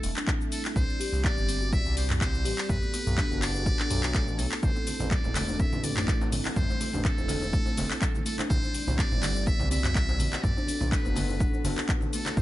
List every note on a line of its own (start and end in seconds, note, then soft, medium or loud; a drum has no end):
0.00 0.11 E1 medium
0.00 0.72 A3 medium
0.00 0.15 A3 loud
0.00 0.72 E4 medium
0.00 0.25 A4 loud
0.00 0.72 A4 medium
0.00 open hi-hat medium
0.00 shaker medium
0.16 0.26 D4 medium
0.16 clap medium
0.16 shaker soft
0.27 kick loud
0.27 clap loud
0.27 shaker medium
0.41 shaker soft
0.51 0.62 A4 loud
0.51 open hi-hat medium
0.51 shaker medium
0.65 clap medium
0.65 shaker soft
0.75 0.84 C2 loud
0.75 2.68 G3 medium
0.75 0.88 C4 medium
0.75 1.26 C5 loud
0.75 2.68 D5 loud
0.75 kick loud
0.75 shaker soft
0.89 0.95 E4 medium
0.89 shaker soft
1.00 1.12 G4 loud
1.00 open hi-hat medium
1.00 shaker medium
1.13 1.27 C2 loud
1.13 shaker soft
1.24 1.36 B3 medium
1.24 1.74 D5 loud
1.24 kick loud
1.24 clap loud
1.24 shaker soft
1.37 1.77 G1 medium
1.37 1.47 C4 medium
1.37 shaker soft
1.48 1.60 C4 loud
1.48 open hi-hat medium
1.48 shaker medium
1.62 1.72 F#4 medium
1.62 shaker soft
1.73 1.97 E5 loud
1.73 kick loud
1.73 shaker medium
1.85 2.47 C2 medium
1.85 shaker soft
1.97 2.08 C5 medium
1.97 open hi-hat loud
1.97 shaker medium
2.10 clap medium
2.10 mid tom medium
2.10 shaker soft
2.21 2.33 C4 medium
2.21 2.72 C5 loud
2.21 kick loud
2.21 clap loud
2.21 shaker medium
2.34 2.40 E4 medium
2.34 shaker soft
2.45 2.53 A1 medium
2.45 2.57 G4 loud
2.45 open hi-hat loud
2.45 shaker medium
2.58 clap medium
2.58 shaker soft
2.69 2.77 B1 loud
2.69 2.81 A3 medium
2.69 4.61 B3 medium
2.69 4.61 F#4 medium
2.69 6.53 A4 loud
2.69 3.44 B4 loud
2.69 kick loud
2.69 mid tom medium
2.69 shaker medium
2.82 2.93 B3 medium
2.82 shaker soft
2.94 3.05 B3 loud
2.94 open hi-hat medium
2.94 shaker medium
3.07 3.20 B1 loud
3.07 3.17 E4 medium
3.07 mid tom medium
3.07 shaker soft
3.18 3.30 D4 medium
3.18 kick loud
3.18 clap loud
3.18 shaker medium
3.31 3.71 F#1 medium
3.31 shaker soft
3.42 4.41 D5 loud
3.42 clap medium
3.42 open hi-hat medium
3.42 shaker medium
3.55 shaker soft
3.66 3.79 B3 medium
3.66 kick loud
3.66 shaker medium
3.79 3.85 D4 medium
3.79 clap medium
3.79 shaker soft
3.90 4.29 B1 loud
3.90 4.02 F#4 loud
3.90 mid tom medium
3.90 open hi-hat loud
3.90 shaker medium
4.03 clap medium
4.03 shaker soft
4.15 4.26 A3 medium
4.15 kick loud
4.15 clap loud
4.15 shaker medium
4.27 4.40 A1 medium
4.27 4.38 B3 medium
4.27 shaker soft
4.39 4.47 B1 loud
4.39 4.50 B3 loud
4.39 4.63 A4 loud
4.39 open hi-hat medium
4.39 shaker medium
4.52 4.62 E4 medium
4.52 clap medium
4.52 shaker soft
4.63 4.71 A1 medium
4.63 8.46 A3 medium
4.63 4.75 A3 medium
4.63 8.46 E4 medium
4.63 5.13 C5 loud
4.63 kick loud
4.63 high conga medium
4.63 shaker medium
4.76 4.82 C4 medium
4.76 djembe tone medium
4.76 shaker soft
4.87 4.99 C4 medium
4.87 open hi-hat medium
4.87 muted conga medium
4.87 shaker medium
5.00 5.14 A1 loud
5.00 high conga medium
5.00 djembe tone medium
5.00 low conga loud
5.00 shaker soft
5.11 5.23 G3 medium
5.11 5.62 D5 loud
5.11 kick loud
5.11 clap loud
5.11 shaker soft
5.24 5.64 E1 medium
5.24 5.34 A3 medium
5.24 muted conga soft
5.24 djembe tone medium
5.24 low conga medium
5.24 shaker soft
5.35 5.47 A3 loud
5.35 clap loud
5.35 open hi-hat loud
5.35 djembe slap medium
5.35 high conga medium
5.35 shaker medium
5.48 5.59 D4 medium
5.48 djembe tone loud
5.48 shaker soft
5.60 5.71 C4 medium
5.60 5.86 E5 loud
5.60 kick loud
5.60 muted conga medium
5.60 shaker medium
5.73 6.34 A1 medium
5.73 high conga medium
5.73 djembe tone medium
5.73 low conga loud
5.73 shaker soft
5.84 6.30 D5 medium
5.84 open hi-hat loud
5.84 high conga loud
5.84 shaker medium
5.97 clap medium
5.97 mid tom medium
5.97 muted conga soft
5.97 djembe tone medium
5.97 shaker soft
6.08 6.21 A3 medium
6.08 kick loud
6.08 clap loud
6.08 shaker medium
6.21 6.27 C4 medium
6.21 djembe slap medium
6.21 djembe tone medium
6.21 shaker soft
6.32 6.40 G1 medium
6.32 6.45 C4 medium
6.32 open hi-hat loud
6.32 high conga medium
6.32 low conga medium
6.32 shaker loud
6.45 clap medium
6.45 muted conga medium
6.45 djembe slap medium
6.45 djembe tone medium
6.45 shaker soft
6.56 6.64 A1 loud
6.56 6.68 G3 medium
6.56 8.48 A4 medium
6.56 7.06 C5 loud
6.56 kick loud
6.56 mid tom medium
6.56 high conga medium
6.56 shaker medium
6.69 6.79 A3 medium
6.69 djembe tone loud
6.69 shaker soft
6.81 6.92 A3 loud
6.81 open hi-hat medium
6.81 muted conga medium
6.81 shaker medium
6.93 7.08 A1 loud
6.93 7.04 D4 medium
6.93 high conga medium
6.93 djembe tone medium
6.93 low conga medium
6.93 shaker soft
7.04 7.17 C4 medium
7.04 8.25 A4 loud
7.04 kick loud
7.04 clap loud
7.04 shaker medium
7.18 7.58 E1 medium
7.18 muted conga soft
7.18 djembe tone medium
7.18 shaker soft
7.28 open hi-hat medium
7.28 djembe slap medium
7.28 high conga medium
7.28 shaker loud
7.42 djembe tone loud
7.42 shaker soft
7.53 7.66 A3 medium
7.53 kick loud
7.53 muted conga medium
7.53 shaker medium
7.66 7.72 C4 medium
7.66 djembe tone loud
7.66 shaker soft
7.77 7.85 E1 loud
7.77 7.90 C4 medium
7.77 open hi-hat medium
7.77 djembe slap medium
7.77 high conga loud
7.77 shaker loud
7.90 clap loud
7.90 muted conga soft
7.90 djembe tone medium
7.90 shaker soft
8.01 8.13 G3 medium
8.01 kick loud
8.01 clap loud
8.01 shaker medium
8.14 8.25 A3 medium
8.14 djembe tone medium
8.14 high conga medium
8.14 shaker soft
8.25 8.38 A3 loud
8.25 8.36 A4 medium
8.25 open hi-hat medium
8.25 shaker loud
8.38 8.49 D4 medium
8.38 clap medium
8.38 muted conga medium
8.38 djembe slap medium
8.38 djembe tone loud
8.38 shaker soft
8.50 8.58 C2 medium
8.50 10.42 G3 medium
8.50 8.99 C5 loud
8.50 10.42 D5 medium
8.50 kick loud
8.50 high conga medium
8.50 shaker medium
8.63 djembe tone medium
8.63 shaker soft
8.74 open hi-hat medium
8.74 muted conga soft
8.74 shaker loud
8.87 9.01 C2 loud
8.87 djembe tone loud
8.87 high conga medium
8.87 low conga medium
8.87 shaker soft
8.98 9.11 C4 medium
8.98 9.48 D5 loud
8.98 kick loud
8.98 clap medium
8.98 shaker medium
9.11 9.52 G1 medium
9.11 9.18 E4 medium
9.11 muted conga soft
9.11 djembe tone medium
9.11 low conga medium
9.11 shaker soft
9.22 9.35 E4 medium
9.22 clap medium
9.22 open hi-hat medium
9.22 djembe slap medium
9.22 high conga loud
9.22 shaker medium
9.36 djembe tone medium
9.36 shaker soft
9.46 9.58 B3 medium
9.46 9.71 E5 loud
9.46 kick loud
9.46 muted conga soft
9.46 shaker medium
9.59 10.21 C2 medium
9.59 9.70 C4 medium
9.59 high conga loud
9.59 djembe tone loud
9.59 low conga medium
9.59 shaker soft
9.71 9.83 C4 loud
9.71 10.44 E5 loud
9.71 open hi-hat medium
9.71 high conga loud
9.71 shaker loud
9.83 9.94 F#4 medium
9.83 clap loud
9.83 mid tom medium
9.83 muted conga soft
9.83 djembe tone medium
9.83 shaker soft
9.95 kick loud
9.95 clap loud
9.95 shaker medium
10.09 djembe slap medium
10.09 djembe tone medium
10.09 shaker soft
10.19 10.27 A1 medium
10.19 open hi-hat medium
10.19 high conga loud
10.19 low conga medium
10.19 shaker loud
10.33 clap medium
10.33 muted conga soft
10.33 djembe slap medium
10.33 djembe tone loud
10.33 shaker soft
10.43 10.51 B1 loud
10.43 12.35 B3 medium
10.43 10.56 B3 medium
10.43 12.35 F#4 medium
10.43 12.42 A4 medium
10.43 10.93 D5 loud
10.43 kick loud
10.43 mid tom medium
10.43 high conga medium
10.43 shaker medium
10.57 10.63 D4 medium
10.57 djembe tone loud
10.57 shaker soft
10.67 10.80 D4 medium
10.67 open hi-hat medium
10.67 muted conga soft
10.67 shaker loud
10.81 10.95 B1 loud
10.81 high conga medium
10.81 djembe tone medium
10.81 low conga loud
10.81 shaker soft
10.92 11.04 A3 medium
10.92 11.86 B4 loud
10.92 kick loud
10.92 clap loud
10.92 shaker medium
11.05 11.45 F#1 medium
11.05 11.15 B3 medium
11.05 muted conga soft
11.05 djembe tone medium
11.05 shaker soft
11.16 11.28 B3 loud
11.16 open hi-hat medium
11.16 djembe slap medium
11.16 high conga loud
11.16 shaker medium
11.29 11.39 E4 medium
11.29 djembe tone medium
11.29 shaker soft
11.40 11.52 D4 medium
11.40 kick loud
11.40 muted conga medium
11.40 shaker medium
11.53 djembe tone medium
11.53 shaker soft
11.64 11.72 F#1 medium
11.64 open hi-hat medium
11.64 djembe slap medium
11.64 high conga loud
11.64 shaker loud
11.77 clap medium
11.77 muted conga soft
11.77 djembe tone medium
11.77 shaker soft
11.89 12.01 B3 medium
11.89 kick loud
11.89 clap loud
11.89 shaker medium
12.01 12.08 F#4 medium
12.01 djembe tone loud
12.01 high conga medium
12.01 shaker soft
12.13 12.20 A3 loud
12.13 12.39 A4 medium
12.13 open hi-hat medium
12.13 shaker loud
12.25 12.32 E4 medium
12.25 clap medium
12.25 djembe slap medium
12.25 muted conga medium
12.25 djembe tone medium
12.25 shaker soft
12.37 12.42 A1 loud
12.37 12.42 G3 medium
12.37 12.42 A3 medium
12.37 12.42 E4 medium
12.37 12.42 C5 loud
12.37 kick loud
12.37 high conga medium
12.37 shaker medium